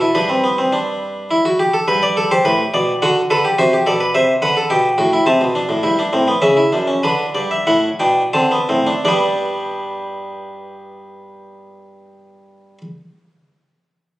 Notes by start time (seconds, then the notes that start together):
0.01 E4
0.15 G2 D4 B4
0.29 C4
0.44 B3
0.58 C4
0.73 D4
1.31 E4
1.45 F#4
1.59 G4
1.74 A4
1.88 G2 B4
2.03 D5
2.17 A4
2.31 G4 C5
2.45 A2 B4
2.74 B2 D5
3.02 D3 F#4 F#5
3.30 D3 A4 B4
3.45 G4
3.59 C3 F#4 C5
3.73 G4
3.86 B2 A4 D5
4.00 B4
4.14 C3 C5 E5
4.42 D3 B4 F#5
4.57 A4
4.70 B2 G4 G5
4.98 A2 F#4
5.13 E4
5.26 C3 C4 A5
5.41 B2
5.55 D4
5.69 A2
5.83 G2 E4
5.99 D4
6.13 A2 C4
6.28 B3
6.42 C#3 C#4 E5
6.57 E4
6.72 F#2 D4
6.88 C#4
7.03 D3 D4 B4
7.35 G2 D5
7.51 E5
7.67 A2 E4 F#5
8.00 B2 D4 G5
8.33 D3 C4 A5
8.51 B3
8.69 A2 C4
8.87 D4
9.05 G2 G3 B3 D4 D5